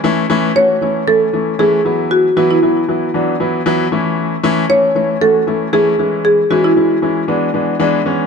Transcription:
X:1
M:4/4
L:1/16
Q:1/4=116
K:A
V:1 name="Marimba"
z4 c4 A4 G4 | F2 F E4 z8 z | z4 c4 A4 G4 | G2 F E4 z8 z |]
V:2 name="Grand piano"
[E,A,CE]2 [E,A,CE]2 [E,A,CF]2 [E,A,CE]2 [E,A,CE]2 [E,A,CE]2 [E,A,CE]2 [E,F,B,E]2- | [E,F,B,E]2 [E,F,B,E]2 [E,F,B,E]2 [E,F,B,E]2 [E,F,B,D]2 [E,F,B,E]2 [E,F,B,E]2 [E,A,CE]2- | [E,A,CE]2 [E,A,CE]2 [E,A,CE]2 [E,A,CE]2 [E,A,CF]2 [E,A,CE]2 [E,A,CE]2 [E,G,CE]2- | [E,G,CE]2 [E,G,CE]2 [E,G,CE]2 [E,G,CE]2 [E,G,B,D]2 [E,G,B,D]2 [E,G,B,D]2 [E,G,B,C]2 |]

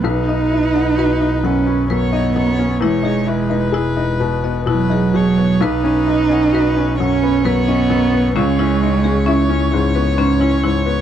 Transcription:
X:1
M:3/4
L:1/16
Q:1/4=66
K:B
V:1 name="Viola"
B8 c2 c2 | c2 B6 B2 c2 | B4 B2 c6 | c12 |]
V:2 name="Marimba"
B d z f B z f b B d d z | E G z B E z B d E G G z | B d z f B z f b B d d z | C E z G C z G B C E E z |]
V:3 name="Upright piano"
B,,, D E D F D F,, C F,, D F,, C | E,, D E D G D B,, B, B,, D B,, B, | B,,, C D C F C F,, B, F,, C F,, B, | C,, C D C E C G,, B, G,, C G,, B, |]
V:4 name="Cello"
D6 C2 B,4 | G,6 z2 F,4 | D6 C2 B,4 | G,6 z6 |]
V:5 name="Double bass" clef=bass
B,,,12 | E,,,12 | B,,,12 | C,,12 |]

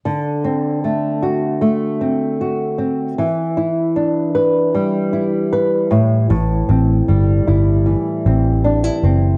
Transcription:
X:1
M:4/4
L:1/16
Q:1/4=77
K:Dmix
V:1 name="Nylon-string guitar"
D,2 C2 A,2 F2 A,2 C2 F2 C2 | E,2 E2 D2 B2 G,2 E2 B2 A,,2 | A,,2 C2 G,2 E2 E,2 C2 D E C2 |]
V:2 name="Picked electric bass" clef=bass
z16 | z16 | A,,,2 A,,,2 G,,,2 G,,,3 z A,,,4 F,,,2 |]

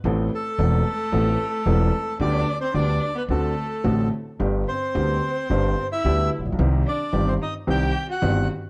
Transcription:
X:1
M:4/4
L:1/16
Q:1/4=110
K:G
V:1 name="Bandoneon"
z2 A12- A2 | d3 c d3 B A6 z2 | z2 c8- c e3 z2 | z2 d3 c _e2 g3 f3 z2 |]
V:2 name="Violin"
z2 A,12- A,2 | D3 C D3 B, A,6 z2 | z2 C8- C E3 z2 | z2 D3 C _E2 G3 F3 z2 |]
V:3 name="Upright piano" clef=bass
[A,,,A,,E,B,CA]2 z2 [E,,,E,,E,B,CA]2 z2 [A,,,A,,E,B,CA]2 z2 [E,,,E,,E,B,CA]2 z2 | [D,,D,G,B,G]2 z2 [D,,D,G,B,G]2 z2 [D,,D,A,CF]2 z2 [A,,,A,,D,A,CF]2 z2 | [G,,,G,,D,G,B,G]2 z2 [D,,D,G,B,G]2 z2 [G,,,G,,D,G,B,G]2 z2 [D,,D,G,B,G]2 z/2 A,,,/2 _B,,,/2 =B,,,/2 | [C,,C,_E,G,CG]2 z2 [G,,,G,,E,G,CG]2 z2 [C,,C,E,G,CG]2 z2 [G,,,G,,E,G,CG]2 z2 |]
V:4 name="Upright bass" clef=bass
A,,,3/2 z2 z/2 E,,,3/2 z2 z/2 A,,,3/2 z2 z/2 E,,,3/2 z2 z/2 | D,,3/2 z2 z/2 D,,3/2 z2 z/2 D,,3/2 z2 z/2 A,,,3/2 z2 z/2 | G,,,3/2 z2 z/2 D,,3/2 z2 z/2 G,,,3/2 z2 z/2 D,,3/2 z A,,,/2 _B,,,/2 =B,,,/2 | C,,3/2 z2 z/2 G,,,3/2 z2 z/2 C,,3/2 z2 z/2 G,,,3/2 z2 z/2 |]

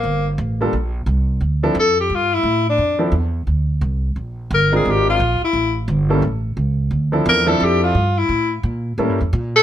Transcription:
X:1
M:4/4
L:1/8
Q:"Swing" 1/4=174
K:Dm
V:1 name="Tenor saxophone"
B, z6 z | z2 A G F E2 D- | D z6 z | z2 B _A G F2 E- |
E z6 z | z2 B A G F2 E- | E z6 A |]
V:2 name="Grand piano"
z3 [G,B,DFA] z4 | z [F,CDEA] z6 | z [F,CDEA] z6 | z3 [_A,CDFB]3 z2 |
z3 [G,B,^CEA] z4 | z [F,CDEA]2 [F,CDEA]3 z2 | z4 [G,B,^CEA] z3 |]
V:3 name="Upright bass" clef=bass
G,,,2 A,,,2 B,,,2 C,,2 | D,,2 F,,2 G,,2 A,,2 | F,,2 E,,2 D,,2 C,,2 | B,,,2 G,,,2 _A,,,2 B,,, z |
A,,,2 G,,,2 A,,,2 ^C,,2 | D,,2 E,,2 F,,2 G,,2 | A,,2 B,,2 (3A,, G,, E,, B,,2 |]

